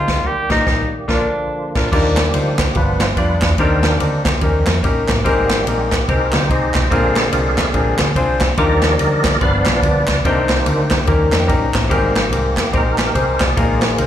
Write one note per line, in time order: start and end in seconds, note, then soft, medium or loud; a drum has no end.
0.00 0.19 D2 medium
0.00 0.23 G#3 medium
0.00 0.23 A#3 medium
0.00 0.14 C4 medium
0.00 0.23 C4 medium
0.00 0.14 D#4 medium
0.00 0.23 D#4 medium
0.00 0.28 F4 loud
0.00 0.15 G#4 medium
0.00 0.15 C5 medium
0.08 kick medium
0.08 snare loud
0.08 closed hi-hat medium
0.24 1.06 D#3 medium
0.24 1.06 G3 medium
0.24 1.06 A#3 medium
0.24 0.31 F#4 medium
0.24 0.51 G4 loud
0.29 1.09 G4 medium
0.49 0.61 A#1 medium
0.49 0.61 A#2 medium
0.49 0.61 A#3 loud
0.49 0.61 D#4 medium
0.49 0.90 D#4 medium
0.49 0.62 G4 medium
0.49 0.62 A#4 medium
0.49 kick medium
0.49 snare medium
0.49 crash medium
0.66 0.84 A#1 medium
0.66 0.84 A#3 medium
0.66 0.83 D#4 medium
0.66 0.84 G4 medium
0.66 kick loud
0.66 snare medium
1.08 1.25 A#1 loud
1.08 1.25 A#2 loud
1.08 1.90 D3 medium
1.08 1.90 F3 medium
1.08 1.25 A#3 medium
1.08 1.91 A#3 medium
1.08 1.25 D4 medium
1.08 1.72 D4 medium
1.08 1.25 F4 medium
1.08 1.90 F4 medium
1.08 1.26 A#4 medium
1.08 kick medium
1.08 snare medium
1.75 1.87 A#1 medium
1.75 1.87 A#3 medium
1.75 1.87 D4 medium
1.75 1.87 F4 medium
1.75 1.87 A#4 medium
1.75 kick medium
1.75 snare medium
1.75 crash medium
1.92 2.28 D#2 loud
1.92 2.55 D#3 medium
1.92 2.56 F3 medium
1.92 2.56 G3 soft
1.92 2.72 A#3 medium
1.92 2.23 D4 loud
1.92 2.56 D4 medium
1.92 2.23 D#4 medium
1.92 2.23 F4 medium
1.92 2.23 G4 medium
1.92 2.79 G4 medium
1.92 2.24 A#4 loud
1.92 kick loud
1.92 crash loud
2.17 snare loud
2.17 clap medium
2.17 ride medium
2.33 2.70 D2 medium
2.33 2.64 D4 medium
2.33 2.65 D#4 medium
2.33 2.65 F4 medium
2.33 2.65 G4 medium
2.33 2.65 C5 medium
2.33 ride medium
2.58 kick loud
2.58 snare loud
2.58 clap loud
2.58 ride medium
2.75 3.11 G1 loud
2.75 3.38 G2 medium
2.75 3.05 F3 medium
2.75 3.06 B3 medium
2.75 3.07 D4 medium
2.75 3.06 D4 medium
2.75 3.07 F4 medium
2.75 3.17 F4 medium
2.75 3.07 G4 medium
2.75 3.02 B4 loud
2.75 3.07 B4 medium
2.75 kick loud
2.75 ride medium
3.00 3.09 C5 loud
3.00 snare loud
3.00 clap loud
3.00 ride medium
3.17 3.38 F2 medium
3.17 3.48 B3 medium
3.17 3.48 D4 medium
3.17 3.56 D4 medium
3.17 3.48 F4 medium
3.17 3.56 F4 medium
3.17 3.48 G4 medium
3.17 3.56 B4 medium
3.17 3.49 D5 medium
3.17 kick medium
3.17 ride medium
3.42 3.56 E2 medium
3.42 kick medium
3.42 snare loud
3.42 clap loud
3.42 ride medium
3.58 3.94 D#2 loud
3.58 4.21 D#3 medium
3.58 4.22 D#3 medium
3.58 4.22 A#3 medium
3.58 3.90 C4 loud
3.58 3.90 D4 medium
3.58 4.23 D4 medium
3.58 3.90 D#4 medium
3.58 3.90 G4 medium
3.58 4.39 G4 medium
3.58 3.90 A#4 loud
3.58 3.98 A#4 medium
3.58 kick loud
3.58 ride medium
3.83 snare loud
3.83 clap medium
3.83 ride medium
3.99 4.36 D2 medium
3.99 4.31 C4 medium
3.99 4.31 D4 medium
3.99 4.31 D#4 medium
3.99 4.32 G4 medium
3.99 4.32 A#4 medium
3.99 ride medium
4.25 kick medium
4.25 snare loud
4.25 clap loud
4.25 ride medium
4.39 4.63 D#2 loud
4.39 5.05 D#3 medium
4.39 4.71 F3 medium
4.39 4.71 G3 medium
4.39 4.73 A#3 medium
4.39 4.72 C#4 medium
4.39 4.73 C#4 medium
4.39 4.73 D#4 medium
4.39 4.73 G4 medium
4.39 4.74 A#4 medium
4.39 kick loud
4.39 ride medium
4.67 4.81 F2 loud
4.67 snare loud
4.67 clap loud
4.67 ride medium
4.83 5.04 A#1 medium
4.83 5.15 A#3 medium
4.83 5.14 C#4 medium
4.83 5.15 D#4 medium
4.83 5.15 G4 medium
4.83 5.15 A#4 loud
4.83 kick medium
4.83 ride medium
5.08 5.23 A1 medium
5.08 kick medium
5.08 snare loud
5.08 clap medium
5.08 ride medium
5.24 5.61 G#1 loud
5.24 5.88 G#2 medium
5.24 5.88 G3 medium
5.24 6.05 A#3 medium
5.24 5.56 C4 loud
5.24 5.88 C4 medium
5.24 5.56 D#4 medium
5.24 6.09 G4 medium
5.24 5.57 G4 medium
5.24 5.56 G#4 medium
5.24 5.57 A#4 loud
5.24 kick loud
5.24 ride medium
5.50 snare loud
5.50 clap medium
5.50 ride medium
5.67 6.03 A#1 loud
5.67 5.98 C4 medium
5.67 5.98 D#4 medium
5.67 5.98 G4 medium
5.67 5.98 G#4 medium
5.67 5.99 A#4 medium
5.67 ride medium
5.92 kick medium
5.92 snare loud
5.92 clap loud
5.92 ride medium
6.08 6.30 C2 loud
6.08 6.39 C4 medium
6.08 6.40 D#4 medium
6.08 6.88 D#4 medium
6.08 6.40 G4 medium
6.08 6.49 G4 medium
6.08 6.40 G#4 medium
6.08 6.34 A#4 loud
6.08 6.40 C5 medium
6.08 kick loud
6.08 ride medium
6.32 6.48 D2 loud
6.32 6.48 G3 medium
6.32 6.48 A#3 soft
6.32 6.49 C4 medium
6.32 6.50 C5 loud
6.32 snare loud
6.32 clap medium
6.32 ride medium
6.50 6.71 C2 medium
6.50 6.81 C4 medium
6.50 6.81 D#4 medium
6.50 6.89 G4 medium
6.50 6.81 G4 medium
6.50 6.82 G#4 medium
6.50 6.89 C5 medium
6.50 6.82 C5 medium
6.50 6.93 D#5 medium
6.50 kick medium
6.50 ride medium
6.74 6.89 B1 medium
6.74 kick medium
6.74 snare loud
6.74 clap medium
6.74 ride medium
6.90 7.27 A#1 loud
6.90 7.54 A#2 medium
6.90 7.72 D3 medium
6.90 7.73 G#3 medium
6.90 7.22 C4 loud
6.90 7.74 C4 medium
6.90 7.23 D4 medium
6.90 7.23 F4 loud
6.90 8.13 G#4 medium
6.90 7.23 G#4 medium
6.90 7.23 A#4 loud
6.90 8.13 D5 medium
6.90 8.13 F5 medium
6.90 kick loud
6.90 ride medium
7.16 snare loud
7.16 clap medium
7.16 ride medium
7.32 7.68 C2 medium
7.32 7.64 C4 medium
7.32 7.64 D4 medium
7.32 7.64 F4 medium
7.32 7.64 G#4 medium
7.32 7.64 A#4 medium
7.32 ride medium
7.57 kick loud
7.57 snare loud
7.57 clap loud
7.57 ride medium
7.73 7.96 A#1 medium
7.73 7.97 D3 medium
7.73 7.97 G#3 soft
7.73 8.05 C4 medium
7.73 7.98 C4 medium
7.73 8.05 D4 medium
7.73 8.05 F4 medium
7.73 8.06 G#4 medium
7.73 8.06 A#4 medium
7.73 kick loud
7.73 ride medium
7.98 8.14 D2 medium
7.98 snare loud
7.98 clap loud
7.98 ride medium
8.15 8.51 C2 medium
8.15 8.47 C4 medium
8.15 8.47 D4 medium
8.15 8.48 F4 medium
8.15 8.48 G#4 medium
8.15 8.48 C5 medium
8.15 kick medium
8.15 ride medium
8.41 kick medium
8.41 snare loud
8.41 clap loud
8.41 ride medium
8.57 8.93 D#2 loud
8.57 9.21 D#3 medium
8.57 9.37 F3 medium
8.57 9.37 G3 medium
8.57 8.89 D4 loud
8.57 8.89 D#4 loud
8.57 8.89 F4 medium
8.57 8.89 G4 medium
8.57 9.38 G4 medium
8.57 8.89 A#4 loud
8.57 9.38 A#4 medium
8.57 9.38 D5 medium
8.57 9.39 D#5 loud
8.57 kick loud
8.57 ride medium
8.82 snare loud
8.82 clap medium
8.82 ride medium
8.99 9.36 D2 loud
8.99 9.31 D4 medium
8.99 9.31 D#4 medium
8.99 9.31 F4 medium
8.99 9.31 G4 medium
8.99 9.32 A#4 medium
8.99 ride medium
9.24 kick medium
9.24 snare loud
9.24 clap loud
9.24 ride medium
9.41 9.62 G1 loud
9.41 10.04 G2 medium
9.41 10.04 F3 medium
9.41 9.72 B3 medium
9.41 10.05 B3 medium
9.41 9.73 D4 medium
9.41 10.05 D4 medium
9.41 9.73 F4 medium
9.41 9.73 G4 medium
9.41 10.21 B4 medium
9.41 9.73 B4 medium
9.41 10.06 D5 medium
9.41 9.81 F5 loud
9.41 kick loud
9.41 ride medium
9.66 9.81 B1 medium
9.66 snare loud
9.66 clap loud
9.66 ride medium
9.82 10.04 D2 medium
9.82 10.13 B3 medium
9.82 10.14 D4 medium
9.82 10.14 F4 medium
9.82 10.14 G4 medium
9.82 10.14 D5 medium
9.82 kick medium
9.82 ride medium
10.07 10.23 C#2 medium
10.07 10.25 D5 medium
10.07 kick medium
10.07 snare loud
10.07 clap loud
10.07 ride medium
10.25 10.60 C2 loud
10.25 10.88 C3 medium
10.25 10.88 D#3 medium
10.25 10.88 A#3 medium
10.25 10.56 C4 loud
10.25 10.56 D4 medium
10.25 10.88 D4 medium
10.25 10.56 D#4 loud
10.25 11.05 D#4 medium
10.25 10.56 G4 medium
10.25 11.05 G4 medium
10.25 10.57 A#4 loud
10.25 11.04 C5 medium
10.25 kick loud
10.25 ride medium
10.49 snare loud
10.49 clap medium
10.49 ride medium
10.65 11.02 D2 medium
10.65 10.97 C4 medium
10.65 10.97 D4 medium
10.65 10.97 D#4 medium
10.65 10.97 G4 medium
10.65 10.97 A#4 medium
10.65 ride medium
10.90 kick medium
10.90 snare loud
10.90 clap medium
10.90 ride medium
11.06 11.29 D#2 loud
11.06 11.70 D#3 medium
11.06 11.71 F3 medium
11.06 11.71 G3 medium
11.06 11.38 A#3 medium
11.06 11.38 C#4 medium
11.06 11.72 C#4 medium
11.06 11.39 D#4 medium
11.06 11.39 G4 medium
11.06 11.39 A#4 loud
11.06 kick loud
11.06 ride medium
11.32 11.47 F2 medium
11.32 11.40 D#5 medium
11.32 snare loud
11.32 clap medium
11.32 ride medium
11.40 11.48 G5 medium
11.47 11.70 A#1 medium
11.47 11.79 A#3 medium
11.47 11.79 C#4 medium
11.47 11.80 D#4 medium
11.47 11.80 G4 medium
11.47 11.80 A#4 loud
11.47 11.87 A#5 medium
11.47 kick medium
11.47 ride medium
11.74 11.89 A1 medium
11.74 kick medium
11.74 snare loud
11.74 clap loud
11.74 ride medium
11.89 12.32 G#1 loud
11.89 12.53 G#2 medium
11.89 12.21 G3 medium
11.89 12.71 A#3 medium
11.89 12.21 C4 loud
11.89 12.22 C4 medium
11.89 12.21 D#4 medium
11.89 12.21 G4 loud
11.89 12.74 G4 medium
11.89 12.21 G#4 medium
11.89 12.22 A#4 loud
11.89 kick loud
11.89 ride medium
12.16 snare loud
12.16 clap medium
12.16 ride medium
12.32 12.68 C2 medium
12.32 12.63 C4 medium
12.32 12.63 D#4 medium
12.32 12.63 G4 medium
12.32 12.63 G#4 medium
12.32 12.64 A#4 medium
12.32 ride medium
12.57 kick medium
12.57 snare loud
12.57 clap loud
12.57 ride medium
12.72 13.10 A#1 loud
12.72 13.04 C4 medium
12.72 13.04 D#4 medium
12.72 13.54 D#4 medium
12.72 13.04 G4 medium
12.72 13.54 G4 medium
12.72 13.05 G#4 medium
12.72 13.43 A#4 loud
12.72 13.05 C5 medium
12.72 kick loud
12.72 ride medium
12.98 snare loud
12.98 clap medium
12.98 ride medium
13.14 13.36 C2 medium
13.14 13.46 C4 medium
13.14 13.46 D#4 medium
13.14 13.46 G4 medium
13.14 13.46 G#4 medium
13.14 13.46 C5 medium
13.14 kick medium
13.14 ride medium
13.40 13.55 B1 medium
13.40 14.07 F4 medium
13.40 14.07 G#4 medium
13.40 13.96 D5 loud
13.40 kick medium
13.40 snare loud
13.40 clap medium
13.40 ride medium
13.56 13.93 A#1 loud
13.56 14.07 A#2 medium
13.56 14.07 D#3 medium
13.56 14.07 G#3 soft
13.56 13.88 A#3 loud
13.56 14.07 C4 medium
13.56 13.88 D#4 medium
13.56 13.88 F4 medium
13.56 13.88 G#4 medium
13.56 13.89 A#4 loud
13.56 kick loud
13.56 ride medium
13.81 snare loud
13.81 clap medium
13.81 ride medium
13.97 14.07 C2 medium
13.97 14.07 A#3 medium
13.97 14.07 D#4 medium
13.97 14.07 F4 medium
13.97 14.07 G#4 medium
13.97 14.07 A#4 medium
13.97 14.07 C5 medium
13.97 ride medium